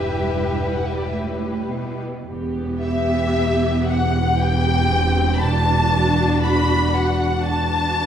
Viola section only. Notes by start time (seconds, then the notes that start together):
Already playing: G3 E4
2.28 B3 G4
4.38 B3 G4
4.88 C4
5.39 D4 F#4
7.44 D4 F#4